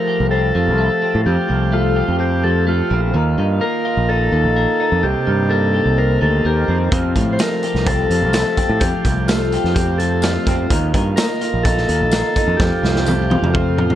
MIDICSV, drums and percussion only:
0, 0, Header, 1, 2, 480
1, 0, Start_track
1, 0, Tempo, 472441
1, 1278, Time_signature, 4, 2, 24, 8
1, 14173, End_track
2, 0, Start_track
2, 0, Title_t, "Drums"
2, 7028, Note_on_c, 9, 42, 96
2, 7031, Note_on_c, 9, 36, 109
2, 7130, Note_off_c, 9, 42, 0
2, 7132, Note_off_c, 9, 36, 0
2, 7271, Note_on_c, 9, 36, 70
2, 7274, Note_on_c, 9, 42, 72
2, 7373, Note_off_c, 9, 36, 0
2, 7376, Note_off_c, 9, 42, 0
2, 7507, Note_on_c, 9, 54, 98
2, 7514, Note_on_c, 9, 42, 90
2, 7518, Note_on_c, 9, 38, 111
2, 7609, Note_off_c, 9, 54, 0
2, 7615, Note_off_c, 9, 42, 0
2, 7619, Note_off_c, 9, 38, 0
2, 7749, Note_on_c, 9, 42, 66
2, 7851, Note_off_c, 9, 42, 0
2, 7876, Note_on_c, 9, 38, 30
2, 7977, Note_off_c, 9, 38, 0
2, 7991, Note_on_c, 9, 36, 114
2, 7993, Note_on_c, 9, 42, 77
2, 8093, Note_off_c, 9, 36, 0
2, 8095, Note_off_c, 9, 42, 0
2, 8235, Note_on_c, 9, 42, 66
2, 8337, Note_off_c, 9, 42, 0
2, 8465, Note_on_c, 9, 54, 88
2, 8469, Note_on_c, 9, 42, 78
2, 8473, Note_on_c, 9, 38, 92
2, 8566, Note_off_c, 9, 54, 0
2, 8571, Note_off_c, 9, 42, 0
2, 8575, Note_off_c, 9, 38, 0
2, 8711, Note_on_c, 9, 36, 79
2, 8711, Note_on_c, 9, 42, 67
2, 8813, Note_off_c, 9, 36, 0
2, 8813, Note_off_c, 9, 42, 0
2, 8947, Note_on_c, 9, 42, 84
2, 8951, Note_on_c, 9, 36, 99
2, 9048, Note_off_c, 9, 42, 0
2, 9053, Note_off_c, 9, 36, 0
2, 9193, Note_on_c, 9, 36, 71
2, 9194, Note_on_c, 9, 42, 66
2, 9294, Note_off_c, 9, 36, 0
2, 9296, Note_off_c, 9, 42, 0
2, 9428, Note_on_c, 9, 54, 85
2, 9436, Note_on_c, 9, 42, 96
2, 9440, Note_on_c, 9, 38, 113
2, 9530, Note_off_c, 9, 54, 0
2, 9537, Note_off_c, 9, 42, 0
2, 9542, Note_off_c, 9, 38, 0
2, 9675, Note_on_c, 9, 42, 73
2, 9776, Note_off_c, 9, 42, 0
2, 9802, Note_on_c, 9, 38, 30
2, 9903, Note_off_c, 9, 38, 0
2, 9914, Note_on_c, 9, 42, 96
2, 9915, Note_on_c, 9, 36, 110
2, 10016, Note_off_c, 9, 42, 0
2, 10017, Note_off_c, 9, 36, 0
2, 10156, Note_on_c, 9, 42, 69
2, 10257, Note_off_c, 9, 42, 0
2, 10384, Note_on_c, 9, 54, 83
2, 10396, Note_on_c, 9, 42, 89
2, 10400, Note_on_c, 9, 38, 102
2, 10485, Note_off_c, 9, 54, 0
2, 10498, Note_off_c, 9, 42, 0
2, 10502, Note_off_c, 9, 38, 0
2, 10633, Note_on_c, 9, 42, 75
2, 10635, Note_on_c, 9, 36, 85
2, 10734, Note_off_c, 9, 42, 0
2, 10736, Note_off_c, 9, 36, 0
2, 10875, Note_on_c, 9, 36, 96
2, 10876, Note_on_c, 9, 42, 97
2, 10977, Note_off_c, 9, 36, 0
2, 10977, Note_off_c, 9, 42, 0
2, 11116, Note_on_c, 9, 36, 81
2, 11120, Note_on_c, 9, 42, 67
2, 11217, Note_off_c, 9, 36, 0
2, 11221, Note_off_c, 9, 42, 0
2, 11350, Note_on_c, 9, 54, 91
2, 11355, Note_on_c, 9, 42, 97
2, 11359, Note_on_c, 9, 38, 114
2, 11451, Note_off_c, 9, 54, 0
2, 11456, Note_off_c, 9, 42, 0
2, 11460, Note_off_c, 9, 38, 0
2, 11596, Note_on_c, 9, 42, 75
2, 11697, Note_off_c, 9, 42, 0
2, 11836, Note_on_c, 9, 36, 97
2, 11836, Note_on_c, 9, 42, 85
2, 11937, Note_off_c, 9, 42, 0
2, 11938, Note_off_c, 9, 36, 0
2, 11962, Note_on_c, 9, 38, 30
2, 12064, Note_off_c, 9, 38, 0
2, 12076, Note_on_c, 9, 42, 69
2, 12178, Note_off_c, 9, 42, 0
2, 12308, Note_on_c, 9, 54, 105
2, 12318, Note_on_c, 9, 42, 78
2, 12322, Note_on_c, 9, 38, 97
2, 12410, Note_off_c, 9, 54, 0
2, 12419, Note_off_c, 9, 42, 0
2, 12423, Note_off_c, 9, 38, 0
2, 12559, Note_on_c, 9, 36, 84
2, 12563, Note_on_c, 9, 42, 68
2, 12660, Note_off_c, 9, 36, 0
2, 12665, Note_off_c, 9, 42, 0
2, 12799, Note_on_c, 9, 36, 110
2, 12803, Note_on_c, 9, 38, 59
2, 12901, Note_off_c, 9, 36, 0
2, 12904, Note_off_c, 9, 38, 0
2, 13050, Note_on_c, 9, 38, 57
2, 13152, Note_off_c, 9, 38, 0
2, 13166, Note_on_c, 9, 38, 61
2, 13268, Note_off_c, 9, 38, 0
2, 13273, Note_on_c, 9, 54, 102
2, 13292, Note_on_c, 9, 48, 75
2, 13375, Note_off_c, 9, 54, 0
2, 13393, Note_off_c, 9, 48, 0
2, 13526, Note_on_c, 9, 48, 82
2, 13627, Note_off_c, 9, 48, 0
2, 13652, Note_on_c, 9, 47, 70
2, 13753, Note_off_c, 9, 47, 0
2, 13764, Note_on_c, 9, 36, 102
2, 13766, Note_on_c, 9, 47, 78
2, 13866, Note_off_c, 9, 36, 0
2, 13867, Note_off_c, 9, 47, 0
2, 14005, Note_on_c, 9, 45, 81
2, 14107, Note_off_c, 9, 45, 0
2, 14124, Note_on_c, 9, 45, 74
2, 14173, Note_off_c, 9, 45, 0
2, 14173, End_track
0, 0, End_of_file